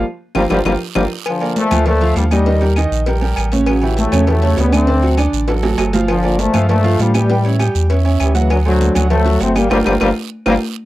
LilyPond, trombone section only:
\new Staff \with { instrumentName = "Trombone section" } { \clef bass \time 4/4 \key g \minor \tempo 4 = 199 r4 <f g bes>8 <f g bes>8 <f g bes>8 r8 <f g bes>8 r8 | <d f>4 <f a>4 <f a>4 <d g>8 <ees g>8~ | <ees g>4 r2. | <cis fis>4 <fis a>4 <fis a>4 <g b>8 <a c'>8~ |
<a c'>4 r2. | <d f>4 <f a>4 <f a>4 <d g>8 <e g>8~ | <e g>4 r2 <e g>8 <cis e>8 | <d fis>8 <d fis>4. <fis a>4 <a c'>8 <g bes>8 |
<f g bes>8 <f g bes>8 <f g bes>8 r4 <f g bes>8 r4 | }